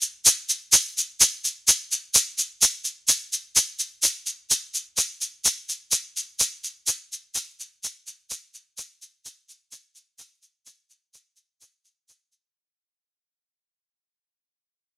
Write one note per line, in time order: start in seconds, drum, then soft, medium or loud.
0.02 shaker soft
0.26 shaker medium
0.49 shaker soft
0.73 shaker medium
0.98 shaker soft
1.21 shaker medium
1.45 shaker soft
1.68 shaker medium
1.92 shaker soft
2.15 shaker medium
2.38 shaker soft
2.62 shaker medium
2.85 shaker soft
3.08 shaker medium
3.33 shaker soft
3.56 shaker medium
3.79 shaker soft
4.03 shaker medium
4.27 shaker soft
4.51 shaker medium
4.74 shaker soft
4.97 shaker medium
5.21 shaker soft
5.45 shaker medium
5.69 shaker soft
5.92 shaker medium
6.17 shaker soft
6.40 shaker medium
6.64 shaker soft
6.87 shaker medium
7.13 shaker soft
7.35 shaker medium
7.60 shaker soft
7.84 shaker medium
8.07 shaker soft
8.31 shaker medium
8.54 shaker soft
8.78 shaker medium
9.02 shaker soft
9.26 shaker medium
9.49 shaker soft
9.72 shaker medium
9.96 shaker soft
10.19 shaker medium
10.42 shaker soft
10.66 shaker medium
10.90 shaker soft
11.14 shaker medium
11.36 shaker soft
11.61 shaker medium
11.85 shaker soft
12.09 shaker soft
12.32 shaker soft